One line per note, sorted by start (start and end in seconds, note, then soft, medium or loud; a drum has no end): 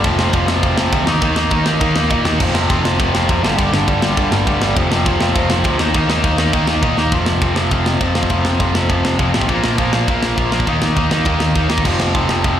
0.04 0.15 F1 loud
0.04 0.18 F2 medium
0.04 0.18 C3 loud
0.04 0.17 F3 loud
0.04 kick loud
0.04 ride medium
0.19 0.30 F1 medium
0.19 0.31 F2 medium
0.19 0.32 C3 medium
0.19 0.32 F3 medium
0.19 snare loud
0.32 0.45 F1 medium
0.32 0.47 F2 medium
0.32 0.46 C3 medium
0.32 0.46 F3 loud
0.32 kick loud
0.32 ride medium
0.47 0.60 F1 medium
0.47 0.61 F2 medium
0.47 0.61 C3 loud
0.47 0.62 F3 loud
0.47 snare loud
0.62 0.74 F1 loud
0.62 0.77 F2 medium
0.62 0.76 C3 medium
0.62 0.76 F3 loud
0.62 kick loud
0.62 ride medium
0.77 0.89 F1 medium
0.77 0.90 F2 loud
0.77 0.91 C3 loud
0.77 0.92 F3 loud
0.77 snare loud
0.91 1.04 D2 loud
0.91 1.06 F2 medium
0.91 1.05 C3 medium
0.91 1.06 F3 medium
0.91 kick loud
0.91 ride medium
1.06 1.18 D#2 medium
1.06 1.21 D#3 medium
1.06 1.20 A#3 loud
1.06 1.20 D#4 loud
1.06 snare loud
1.21 1.34 D#2 loud
1.21 1.35 D#3 medium
1.21 1.36 A#3 loud
1.21 1.36 D#4 loud
1.21 kick loud
1.21 ride medium
1.36 1.48 D#2 medium
1.36 1.51 D#3 medium
1.36 1.50 A#3 medium
1.36 1.49 D#4 medium
1.36 snare loud
1.50 1.63 D#2 medium
1.50 1.63 D#3 medium
1.50 1.64 A#3 medium
1.50 1.65 D#4 medium
1.50 kick loud
1.50 ride medium
1.65 1.78 D#2 medium
1.65 1.80 D#3 medium
1.65 1.80 A#3 loud
1.65 1.79 D#4 loud
1.65 snare loud
1.80 1.93 D#3 loud
1.80 1.94 D#3 medium
1.80 1.95 A#3 medium
1.80 1.96 D#4 medium
1.80 kick loud
1.80 ride medium
1.96 2.07 D#2 medium
1.96 2.10 D#3 medium
1.96 2.10 A#3 loud
1.96 2.09 D#4 loud
1.96 snare loud
2.10 2.22 A#2 medium
2.10 2.24 D#3 medium
2.10 2.25 A#3 medium
2.10 2.26 D#4 medium
2.10 kick loud
2.10 ride medium
2.25 2.37 D#2 loud
2.25 2.39 D#3 medium
2.25 2.40 A#3 medium
2.25 2.40 D#4 loud
2.25 snare loud
2.40 2.52 F1 loud
2.40 2.54 F2 loud
2.40 2.54 C3 loud
2.40 2.52 F3 loud
2.40 kick loud
2.40 crash loud
2.54 2.66 F1 medium
2.54 2.68 F2 medium
2.54 2.69 C3 medium
2.54 2.70 F3 loud
2.54 snare loud
2.69 2.81 F1 medium
2.69 2.83 F2 medium
2.69 2.83 C3 medium
2.69 2.82 F3 medium
2.69 kick loud
2.69 ride medium
2.83 2.96 F1 medium
2.83 2.97 F2 medium
2.83 2.98 C3 medium
2.83 2.98 F3 loud
2.83 snare loud
2.98 3.11 F1 medium
2.98 3.13 F2 medium
2.98 3.13 C3 medium
2.98 3.12 F3 medium
2.98 kick loud
2.98 ride medium
3.13 3.25 F1 medium
3.13 3.27 F2 medium
3.13 3.27 C3 loud
3.13 3.28 F3 loud
3.13 snare loud
3.28 3.42 F2 medium
3.28 3.40 F2 medium
3.28 3.43 C3 loud
3.28 3.43 F3 medium
3.28 kick loud
3.28 ride medium
3.42 3.55 G1 loud
3.42 3.58 G2 medium
3.42 3.57 D3 loud
3.42 3.56 G3 loud
3.42 snare loud
3.57 3.70 G1 loud
3.57 3.71 G2 medium
3.57 3.72 D3 loud
3.57 3.73 G3 loud
3.57 kick loud
3.57 ride medium
3.72 3.84 G1 medium
3.72 3.87 G2 medium
3.72 3.86 D3 medium
3.72 3.86 G3 loud
3.72 snare loud
3.87 3.99 G1 medium
3.87 4.00 G2 medium
3.87 4.01 D3 medium
3.87 4.01 G3 medium
3.87 kick loud
3.87 ride medium
4.01 4.14 G1 medium
4.01 4.17 G2 medium
4.01 4.16 D3 loud
4.01 4.16 G3 loud
4.01 snare loud
4.17 4.29 G2 medium
4.17 4.30 G2 medium
4.17 4.31 D3 medium
4.17 4.31 G3 medium
4.17 kick loud
4.17 ride medium
4.31 4.43 G1 medium
4.31 4.46 G2 loud
4.31 4.46 D3 loud
4.31 4.45 G3 loud
4.31 snare loud
4.46 4.58 D2 loud
4.46 4.61 G2 medium
4.46 4.61 D3 medium
4.46 4.62 G3 medium
4.46 kick loud
4.46 ride medium
4.61 4.73 G1 loud
4.61 4.76 G2 medium
4.61 4.76 D3 loud
4.61 4.77 G3 loud
4.61 snare loud
4.76 4.88 F1 loud
4.76 4.90 F2 loud
4.76 4.90 C3 loud
4.76 4.89 F3 loud
4.76 kick loud
4.76 ride medium
4.90 5.02 F1 medium
4.90 5.04 F2 medium
4.90 5.06 C3 medium
4.90 5.06 F3 loud
4.90 snare loud
5.06 5.18 F1 medium
5.06 5.21 F2 medium
5.06 5.21 C3 medium
5.06 5.20 F3 loud
5.06 kick loud
5.06 ride medium
5.19 5.31 F1 medium
5.19 5.34 F2 medium
5.19 5.35 C3 loud
5.19 5.35 F3 loud
5.19 snare loud
5.35 5.47 F1 loud
5.35 5.51 F2 medium
5.35 5.50 C3 medium
5.35 5.49 F3 loud
5.35 kick loud
5.35 ride medium
5.49 5.61 F1 loud
5.49 5.63 F2 medium
5.49 5.64 C3 loud
5.49 5.65 F3 loud
5.49 snare loud
5.64 5.76 D2 loud
5.64 5.78 F2 medium
5.64 5.79 C3 medium
5.64 5.79 F3 medium
5.64 kick loud
5.64 ride medium
5.79 5.91 D#2 loud
5.79 5.94 D#3 loud
5.79 5.94 A#3 loud
5.79 5.93 D#4 loud
5.79 snare loud
5.94 6.06 D#2 loud
5.94 6.08 D#3 medium
5.94 6.08 A#3 loud
5.94 6.09 D#4 loud
5.94 kick loud
5.94 ride medium
6.08 6.20 D#2 medium
6.08 6.23 D#3 medium
6.08 6.22 A#3 medium
6.08 6.21 D#4 medium
6.08 snare loud
6.22 6.35 D#2 medium
6.22 6.36 D#3 medium
6.22 6.37 A#3 medium
6.22 6.37 D#4 medium
6.22 kick loud
6.22 ride medium
6.37 6.50 D#2 medium
6.37 6.53 D#3 medium
6.37 6.53 A#3 loud
6.37 6.52 D#4 loud
6.37 snare loud
6.53 6.65 D#3 medium
6.53 6.67 D#3 medium
6.53 6.68 A#3 medium
6.53 6.69 D#4 medium
6.53 kick loud
6.53 ride medium
6.67 6.79 D#2 medium
6.67 6.84 D#3 loud
6.67 6.83 A#3 loud
6.67 6.82 D#4 loud
6.67 snare loud
6.83 6.94 A#2 loud
6.83 6.97 D#3 medium
6.83 6.97 A#3 medium
6.83 6.98 D#4 medium
6.83 kick loud
6.83 ride medium
6.97 7.13 D#2 medium
6.97 7.12 D#3 medium
6.97 7.12 A#3 medium
6.97 7.12 D#4 medium
6.97 snare medium
7.12 7.24 F1 medium
7.12 7.42 F2 medium
7.12 7.42 C3 loud
7.12 7.43 F3 loud
7.12 kick loud
7.12 ride medium
7.26 7.38 F1 medium
7.26 snare loud
7.42 7.53 F1 medium
7.42 7.55 F2 medium
7.42 7.55 C3 medium
7.42 7.55 F3 medium
7.42 kick loud
7.42 ride medium
7.55 7.68 F1 medium
7.55 7.70 F2 medium
7.55 7.70 C3 medium
7.55 7.72 F3 medium
7.55 snare loud
7.71 7.94 F1 medium
7.71 8.00 F2 medium
7.71 8.00 C3 loud
7.71 8.01 F3 loud
7.71 kick loud
7.71 ride medium
7.86 snare loud
8.01 8.12 F1 medium
8.01 8.15 F2 medium
8.01 8.15 C3 medium
8.01 8.15 F3 medium
8.01 kick loud
8.01 ride medium
8.15 8.27 F1 medium
8.15 8.28 F2 medium
8.15 8.29 C3 medium
8.15 8.31 F3 medium
8.15 snare loud
8.23 kick medium
8.30 8.42 F1 medium
8.30 8.58 F2 loud
8.30 8.59 C3 loud
8.30 8.60 F3 loud
8.30 kick loud
8.30 ride medium
8.45 8.57 F2 medium
8.45 snare loud
8.59 8.71 F1 medium
8.59 8.75 F2 medium
8.59 8.74 C3 medium
8.59 8.73 F3 medium
8.59 kick loud
8.59 ride medium
8.74 8.86 F1 medium
8.74 8.88 F2 medium
8.74 8.89 C3 medium
8.74 8.90 F3 loud
8.74 snare loud
8.89 9.01 F1 medium
8.89 9.16 F2 medium
8.89 9.17 C3 loud
8.89 9.18 F3 loud
8.89 kick loud
8.89 ride medium
9.05 9.16 F1 medium
9.05 snare loud
9.18 9.31 F1 medium
9.18 9.34 F2 medium
9.18 9.32 C3 medium
9.18 9.32 F3 medium
9.18 kick loud
9.18 ride medium
9.33 9.46 A1 loud
9.33 9.48 F2 medium
9.33 9.47 C3 medium
9.33 9.47 F3 medium
9.33 snare loud
9.41 kick medium
9.47 9.61 A#1 loud
9.47 9.76 A#2 loud
9.47 9.76 F3 loud
9.47 9.77 A#3 loud
9.47 kick loud
9.47 ride medium
9.64 9.75 A#1 medium
9.64 snare loud
9.77 9.90 A#1 medium
9.77 9.93 A#2 medium
9.77 9.92 F3 medium
9.77 9.91 A#3 medium
9.77 kick loud
9.77 ride medium
9.92 10.06 A#1 medium
9.92 10.06 A#2 medium
9.92 10.06 F3 medium
9.92 10.07 A#3 medium
9.92 snare loud
10.07 10.31 A#1 medium
10.07 10.35 A#2 loud
10.07 10.36 F3 loud
10.07 10.36 A#3 loud
10.07 kick loud
10.07 ride medium
10.23 snare loud
10.36 10.49 A#1 medium
10.36 10.51 A#2 medium
10.36 10.51 F3 medium
10.36 10.50 A#3 medium
10.36 kick loud
10.36 ride medium
10.51 10.64 A#1 medium
10.51 10.66 A#2 medium
10.51 10.66 F3 medium
10.51 10.66 A#3 medium
10.51 snare loud
10.60 kick medium
10.67 10.79 D#2 loud
10.67 10.94 D#3 medium
10.67 10.95 A#3 loud
10.67 10.96 D#4 loud
10.67 kick loud
10.67 ride medium
10.82 10.94 D#3 medium
10.82 snare loud
10.96 11.08 D#2 medium
10.96 11.11 D#3 medium
10.96 11.11 A#3 medium
10.96 11.10 D#4 medium
10.96 kick loud
10.96 ride medium
11.11 11.23 D#2 medium
11.11 11.24 D#3 medium
11.11 11.25 A#3 medium
11.11 11.26 D#4 medium
11.11 snare loud
11.25 11.38 D#2 medium
11.25 11.53 D#3 loud
11.25 11.54 A#3 medium
11.25 11.55 D#4 loud
11.25 kick loud
11.25 ride medium
11.40 11.53 D#2 medium
11.40 snare loud
11.55 11.67 D#2 medium
11.55 11.69 D#3 medium
11.55 11.68 A#3 medium
11.55 11.67 D#4 medium
11.55 kick loud
11.55 ride medium
11.69 11.82 D#2 medium
11.69 11.84 D#3 medium
11.69 11.84 A#3 medium
11.69 11.83 D#4 medium
11.69 snare loud
11.78 kick medium
11.83 11.97 F1 loud
11.83 12.14 F2 medium
11.83 12.14 C3 medium
11.83 12.15 F3 loud
11.83 kick loud
11.83 crash loud
11.99 12.11 F1 medium
11.99 snare loud
12.14 12.26 F1 medium
12.14 12.29 F2 medium
12.14 12.29 C3 medium
12.14 12.29 F3 medium
12.14 kick loud
12.14 ride medium
12.29 12.41 F1 medium
12.29 12.43 F2 medium
12.29 12.43 C3 medium
12.29 12.45 F3 medium
12.29 snare loud
12.44 12.60 F1 medium
12.44 12.60 F2 loud
12.44 12.60 C3 medium
12.44 12.60 F3 medium
12.44 kick loud
12.44 ride medium